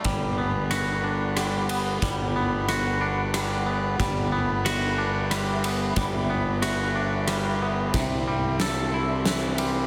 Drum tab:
RD |x-x-xx|x-x-x-|x-x-xx|x-x-x-|
SD |--r-r-|--r-r-|--r-r-|--r-r-|
BD |o-----|o-----|o-----|o-----|

RD |x-x-xx|
SD |--o-o-|
BD |o-----|